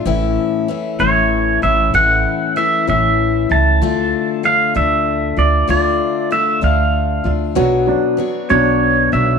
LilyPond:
<<
  \new Staff \with { instrumentName = "Pedal steel guitar" } { \time 6/8 \key a \major \tempo 4. = 64 r4. cis''4 e''8 | fis''4 e''8 e''4 a''8~ | a''4 f''8 e''4 d''8 | d''4 e''8 f''4 r8 |
r4. cis''4 e''8 | }
  \new Staff \with { instrumentName = "Steel-string acoustic guitar" } { \time 6/8 \key a \major <a, e a cis' e'>4 <e a cis' e'>8 <a, e a cis' e'>4 <a cis' e'>8 | <a, e a cis' e'>4 <e a cis' e'>8 <a, e a cis' e'>4 <a cis' e'>8 | <d a d' f'>4 <d a d' f'>8 <d a d' f'>4 <a d' f'>8 | <d a d' f'>4 <d a d' f'>8 <d a d' f'>4 <a d' f'>8 |
<b, fis b d' fis' cis''>4 <b d' fis' cis''>8 <b, fis b d' fis' cis''>4 <b d' fis' cis''>8 | }
  \new Staff \with { instrumentName = "Felt piano" } { \clef bass \time 6/8 \key a \major r2. | r2. | r2. | r2. |
fis8 <fis d'>4 <fis d'>4. | }
  \new Staff \with { instrumentName = "Upright bass" } { \clef bass \time 6/8 \key a \major a,,8 r4 a,,4 a,,8 | a,,8 r4 a,,4 cis,8 | d,8 r4 d,4 d,8 | d,8 r4 d,4 d,8 |
b,,8 r4 b,,4 b,,8 | }
>>